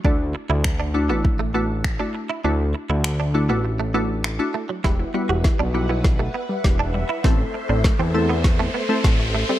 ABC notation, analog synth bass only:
X:1
M:4/4
L:1/16
Q:1/4=100
K:Em
V:1 name="Analog synth bass" clef=bass
D,,3 D,,4 A,,,8- A,,, | D,,3 D,,4 A,,,8- A,,, | E,,,2 z E,,,2 B,,,6- B,,, E,,,4 | A,,,2 z A,,,2 E,,6- E,, A,,,4 |]